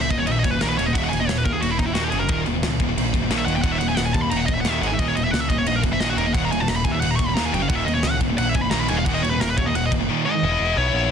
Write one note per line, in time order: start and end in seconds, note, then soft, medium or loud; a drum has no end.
0.01 0.10 E5 medium
0.10 0.26 D#1 medium
0.10 0.19 D#2 medium
0.10 0.19 A#2 medium
0.10 0.19 D#5 medium
0.10 kick medium
0.10 crash medium
0.18 0.27 D#2 medium
0.18 0.27 A#2 medium
0.18 0.26 C#5 medium
0.26 0.43 A#1 medium
0.26 0.42 D#2 medium
0.26 0.43 A#2 medium
0.26 0.32 D#5 medium
0.26 crash medium
0.32 0.38 E5 medium
0.39 0.51 C#5 medium
0.39 0.44 D#5 medium
0.44 0.60 F#1 medium
0.44 0.52 D#2 medium
0.44 0.51 A#2 medium
0.44 kick medium
0.44 crash medium
0.51 0.59 D#2 medium
0.51 0.60 A#2 medium
0.51 0.60 B4 medium
0.61 0.77 A#1 medium
0.61 0.76 D#2 medium
0.61 0.77 A#2 medium
0.61 0.77 D#3 medium
0.61 0.69 A#4 medium
0.61 snare loud
0.61 crash medium
0.69 0.77 B4 medium
0.77 0.94 D#1 medium
0.77 0.85 D#2 medium
0.77 0.85 A#2 medium
0.77 0.86 D#3 medium
0.77 0.86 C#5 loud
0.77 crash medium
0.86 0.94 D#2 medium
0.86 0.94 A#2 medium
0.86 0.94 D#5 medium
0.93 1.10 D#1 medium
0.93 1.10 D#2 medium
0.93 1.11 A#2 loud
0.93 1.11 D#3 loud
0.93 0.98 F#5 medium
0.93 kick loud
0.93 crash medium
0.98 1.04 E5 medium
1.04 1.09 F#5 medium
1.09 1.27 D#1 medium
1.09 1.19 D#2 medium
1.09 1.19 A#2 medium
1.09 1.18 G#5 loud
1.09 crash medium
1.20 1.27 D#2 medium
1.20 1.27 A#2 medium
1.20 1.27 D#5 medium
1.27 1.44 D#1 medium
1.27 1.43 D#2 medium
1.27 1.43 A#2 medium
1.27 1.36 C#5 medium
1.27 snare loud
1.27 crash medium
1.38 1.44 B4 medium
1.45 1.61 D#2 medium
1.45 1.53 D#2 medium
1.45 1.53 A#2 medium
1.45 1.52 A#4 medium
1.45 kick medium
1.45 crash soft
1.52 1.60 D#2 medium
1.52 1.61 A#2 medium
1.52 1.61 G#4 medium
1.61 1.78 D#1 medium
1.61 1.77 D#2 medium
1.61 1.77 A#2 medium
1.61 1.69 F#4 medium
1.61 crash medium
1.71 1.79 E4 medium
1.79 1.95 D#1 loud
1.79 1.86 D#2 medium
1.79 1.85 A#2 medium
1.79 1.86 D#4 medium
1.79 kick medium
1.79 crash medium
1.86 1.93 D#2 medium
1.86 1.93 A#2 medium
1.86 1.94 E4 medium
1.94 2.10 D#2 loud
1.94 2.11 D#2 medium
1.94 2.11 A#2 medium
1.94 2.11 D#3 loud
1.94 2.03 F#4 medium
1.94 snare loud
1.94 crash medium
2.04 2.09 G4 medium
2.10 2.28 F#1 medium
2.10 2.19 F#2 medium
2.10 2.19 C#3 medium
2.10 2.20 F#3 loud
2.10 2.19 G#4 medium
2.10 crash medium
2.20 2.29 F#2 medium
2.20 2.29 C#3 medium
2.20 2.28 A#4 medium
2.28 2.45 D#1 medium
2.28 2.45 D#2 medium
2.28 2.45 A#2 loud
2.28 2.45 D#3 loud
2.28 2.39 A#4 medium
2.28 kick loud
2.28 crash medium
2.46 2.62 D#1 medium
2.46 2.53 D#2 medium
2.46 2.53 A#2 medium
2.46 crash medium
2.54 2.62 D#2 medium
2.54 2.63 A#2 medium
2.63 2.78 C#2 medium
2.63 2.78 D#2 medium
2.63 2.78 A#2 medium
2.63 snare loud
2.63 crash medium
2.80 2.95 D#1 medium
2.80 2.88 D#2 medium
2.80 2.88 A#2 medium
2.80 kick medium
2.80 crash medium
2.89 2.96 D#2 medium
2.89 2.96 A#2 medium
2.96 3.12 A#1 medium
2.96 3.12 D#2 medium
2.96 3.12 A#2 medium
2.96 crash medium
3.14 3.29 F#1 medium
3.14 3.22 D#2 medium
3.14 3.21 A#2 medium
3.14 kick medium
3.14 crash medium
3.23 3.30 D#2 medium
3.23 3.30 A#2 medium
3.30 3.45 A#1 medium
3.30 3.46 D#2 medium
3.30 3.46 A#2 medium
3.30 3.47 D#3 loud
3.30 snare loud
3.30 crash medium
3.38 3.45 E5 medium
3.45 3.62 D#1 medium
3.45 3.55 D#2 medium
3.45 3.55 A#2 medium
3.45 3.55 D#3 medium
3.45 3.54 F#5 loud
3.45 crash medium
3.56 3.63 D#2 medium
3.56 3.64 A#2 medium
3.56 3.61 G5 medium
3.62 3.79 D#1 medium
3.62 3.80 D#2 loud
3.62 3.80 A#2 loud
3.62 3.80 D#3 medium
3.62 3.72 F#5 medium
3.62 kick loud
3.62 crash medium
3.72 3.78 E5 medium
3.79 3.96 D#1 medium
3.79 3.89 D#2 medium
3.79 3.88 A#2 medium
3.79 3.88 F#5 loud
3.79 crash medium
3.89 3.97 D#2 medium
3.89 3.98 A#2 medium
3.89 3.97 G#5 loud
3.97 4.13 D#1 medium
3.97 4.13 D#2 medium
3.97 4.13 A#2 medium
3.97 4.05 F#5 medium
3.97 snare loud
3.97 crash medium
4.06 4.14 G#5 medium
4.13 4.30 D#2 medium
4.13 4.22 D#2 medium
4.13 4.22 A#2 medium
4.13 4.21 A5 medium
4.13 kick medium
4.13 crash soft
4.21 4.31 D#2 medium
4.21 4.31 A#2 medium
4.21 4.30 B5 medium
4.31 4.47 D#1 medium
4.31 4.47 D#2 medium
4.31 4.47 A#2 medium
4.31 4.39 A#5 medium
4.31 crash medium
4.36 4.46 F#5 medium
4.46 4.63 D#1 medium
4.46 4.57 D#2 medium
4.46 4.57 A#2 medium
4.46 4.54 D#5 medium
4.46 kick medium
4.46 crash medium
4.54 4.65 A#2 medium
4.54 4.61 E5 medium
4.59 4.64 D#2 medium
4.59 4.70 F#5 loud
4.64 4.80 D#2 medium
4.64 4.81 D#2 medium
4.64 4.81 A#2 loud
4.64 4.82 D#3 medium
4.64 snare loud
4.64 crash medium
4.70 4.80 E5 medium
4.81 4.97 G#1 loud
4.81 4.89 G#2 medium
4.81 4.90 D#3 medium
4.81 4.90 G#3 medium
4.81 4.87 F#5 medium
4.81 crash medium
4.87 4.92 G#5 medium
4.92 5.00 G#2 medium
4.92 4.99 D#3 medium
4.92 4.99 E5 medium
4.99 5.14 D#1 medium
4.99 5.15 D#2 loud
4.99 5.15 A#2 loud
4.99 5.16 D#3 medium
4.99 5.07 D#5 medium
4.99 kick loud
4.99 crash medium
5.08 5.16 C#5 medium
5.15 5.31 D#1 medium
5.15 5.25 D#2 medium
5.15 5.25 A#2 medium
5.15 5.24 D#5 loud
5.15 crash medium
5.24 5.32 D#2 medium
5.24 5.33 A#2 medium
5.24 5.31 E5 medium
5.31 5.48 C#2 medium
5.31 5.48 D#2 medium
5.31 5.48 A#2 medium
5.31 5.40 F#5 loud
5.31 snare loud
5.31 crash medium
5.40 5.49 E5 medium
5.49 5.65 D#1 medium
5.49 5.57 D#2 medium
5.49 5.57 A#2 medium
5.49 5.57 D#5 medium
5.49 kick medium
5.49 crash medium
5.58 5.66 D#2 medium
5.58 5.66 A#2 medium
5.58 5.66 C#5 medium
5.66 5.82 A#1 medium
5.66 5.82 D#2 medium
5.66 5.82 A#2 medium
5.66 5.75 D#5 medium
5.66 crash medium
5.76 5.80 A#4 medium
5.83 5.99 F#1 medium
5.83 5.91 D#2 medium
5.83 5.91 A#2 medium
5.83 kick medium
5.83 crash medium
5.92 6.00 D#2 medium
5.92 6.00 A#2 medium
5.92 6.00 E5 medium
6.00 6.16 A#1 medium
6.00 6.16 D#2 medium
6.00 6.17 A#2 medium
6.00 6.17 D#3 loud
6.00 6.08 D#5 medium
6.00 snare loud
6.00 crash medium
6.10 6.17 F#4 medium
6.17 6.33 D#1 loud
6.17 6.25 D#2 medium
6.17 6.25 A#2 medium
6.17 6.25 D#3 loud
6.17 6.25 A#4 medium
6.17 crash medium
6.26 6.34 D#2 medium
6.26 6.34 A#2 medium
6.26 6.33 D#5 medium
6.34 6.50 D#1 loud
6.34 6.50 D#2 loud
6.34 6.51 A#2 loud
6.34 6.51 D#3 loud
6.34 6.42 F#5 loud
6.34 kick loud
6.34 crash medium
6.45 6.51 A#5 loud
6.51 6.67 D#1 medium
6.51 6.60 D#2 medium
6.51 6.59 A#2 medium
6.51 6.60 G#5 loud
6.51 crash medium
6.60 6.69 D#2 medium
6.60 6.68 A#2 medium
6.60 6.69 A5 medium
6.68 6.84 D#1 medium
6.68 6.84 D#2 medium
6.68 6.84 A#2 medium
6.68 6.76 A#5 medium
6.68 snare loud
6.68 crash medium
6.76 6.84 B5 loud
6.84 7.01 D#2 medium
6.84 6.93 D#2 medium
6.84 6.93 A#2 medium
6.84 6.93 G#5 medium
6.84 kick medium
6.84 crash medium
6.92 7.02 D#2 medium
6.92 7.02 A#2 medium
6.92 7.00 E5 loud
7.00 7.17 D#1 medium
7.00 7.18 D#2 medium
7.00 7.18 A#2 medium
7.00 7.09 F#5 medium
7.00 crash medium
7.11 7.16 A#5 loud
7.16 7.34 D#1 medium
7.16 7.27 A#2 medium
7.16 7.27 C#6 loud
7.16 kick medium
7.16 crash medium
7.20 7.27 D#2 medium
7.27 7.35 D#2 medium
7.27 7.36 A#2 medium
7.27 7.35 B5 medium
7.35 7.54 D#2 medium
7.35 7.52 D#2 medium
7.35 7.53 A#2 loud
7.35 7.53 D#3 loud
7.35 7.45 A#5 loud
7.35 snare loud
7.35 crash medium
7.45 7.53 G#5 medium
7.52 7.68 F#1 loud
7.52 7.60 F#2 medium
7.52 7.60 C#3 medium
7.52 7.61 F#3 loud
7.52 7.62 G5 loud
7.52 crash medium
7.61 7.70 F#2 medium
7.61 7.70 C#3 medium
7.61 7.69 F5 medium
7.69 7.85 D#1 medium
7.69 7.86 D#2 medium
7.69 7.86 A#2 loud
7.69 7.87 D#3 loud
7.69 7.76 F#5 loud
7.69 kick loud
7.69 crash medium
7.76 7.85 E5 medium
7.85 8.02 D#1 medium
7.85 7.95 D#2 medium
7.85 7.95 A#2 medium
7.85 7.94 D#5 loud
7.85 crash medium
7.94 8.03 D#2 medium
7.94 8.03 A#2 medium
7.94 8.03 C#5 medium
8.03 8.19 C#2 loud
8.03 8.19 D#2 medium
8.03 8.20 A#2 medium
8.03 8.10 D#5 loud
8.03 snare loud
8.03 crash medium
8.10 8.16 F#5 loud
8.21 8.37 D#1 loud
8.21 8.28 D#2 medium
8.21 8.28 A#2 medium
8.21 kick medium
8.21 crash medium
8.29 8.37 D#2 medium
8.29 8.38 A#2 medium
8.38 8.54 A#1 loud
8.38 8.53 D#2 medium
8.38 8.54 A#2 medium
8.38 8.49 F#5 medium
8.38 crash medium
8.49 8.56 E5 medium
8.54 8.64 D#2 medium
8.54 8.63 A#2 medium
8.54 8.62 G#5 medium
8.54 kick medium
8.54 crash medium
8.62 8.71 D#2 medium
8.62 8.71 A#2 medium
8.62 8.70 B5 medium
8.71 8.88 A#1 medium
8.71 8.88 D#2 medium
8.71 8.88 A#2 loud
8.71 8.89 D#3 loud
8.71 8.80 A#5 loud
8.71 snare loud
8.71 crash medium
8.80 8.89 B5 loud
8.88 9.05 D#1 loud
8.88 8.97 D#2 medium
8.88 8.97 A#2 loud
8.88 8.97 D#3 medium
8.88 8.98 G#5 loud
8.88 crash medium
8.97 9.06 D#2 medium
8.97 9.06 A#2 medium
8.97 9.05 F5 medium
9.05 9.23 D#2 loud
9.05 9.23 A#2 loud
9.05 9.23 D#3 loud
9.05 9.14 F#5 loud
9.05 kick loud
9.05 crash medium
9.15 9.23 D#5 medium
9.22 9.39 D#1 medium
9.22 9.32 D#2 medium
9.22 9.31 A#2 medium
9.22 9.30 C#5 loud
9.22 crash medium
9.30 9.39 D#2 medium
9.30 9.40 A#2 medium
9.30 9.40 B4 medium
9.40 9.56 D#1 medium
9.40 9.56 D#2 medium
9.40 9.56 A#2 medium
9.40 9.48 A#4 medium
9.40 snare loud
9.40 crash medium
9.50 9.57 B4 loud
9.58 9.74 D#2 medium
9.58 9.67 D#2 medium
9.58 9.66 A#2 medium
9.58 9.66 C#5 loud
9.58 kick medium
9.58 crash medium
9.66 9.74 D#2 medium
9.66 9.74 A#2 medium
9.66 9.74 D#5 loud
9.74 9.90 D#1 medium
9.74 9.90 D#2 medium
9.74 9.90 A#2 medium
9.74 9.84 F#5 loud
9.74 crash medium
9.86 9.90 D#5 loud
9.92 10.08 F#1 medium
9.92 9.99 D#2 medium
9.92 9.99 A#2 medium
9.92 kick medium
9.92 crash medium
10.00 10.08 D#2 medium
10.00 10.08 A#2 medium
10.09 10.25 D#2 medium
10.09 10.25 A#2 medium
10.09 10.25 D#3 loud
10.26 10.33 G#2 medium
10.26 10.33 D#3 loud
10.26 10.34 G#3 medium
10.26 10.78 D#5 loud
10.34 10.43 G#2 medium
10.34 10.43 D#3 medium
10.43 10.56 E1 medium
10.43 10.51 B3 medium
10.43 10.51 E4 medium
10.51 10.59 B3 medium
10.51 10.58 E4 medium
10.59 10.73 E1 medium
10.59 10.65 B3 medium
10.59 10.66 E4 medium
10.66 10.73 B3 medium
10.66 10.74 E4 medium
10.74 10.90 B1 medium
10.74 10.81 B3 medium
10.74 10.81 E4 medium
10.74 11.09 C#5 medium
10.81 10.89 B3 medium
10.81 10.88 E4 medium
10.88 10.95 B3 medium
10.88 10.95 E4 medium
10.93 11.11 A#1 medium
10.93 11.03 B3 medium
10.93 11.03 E4 medium
11.05 11.11 B3 medium
11.05 11.11 E4 medium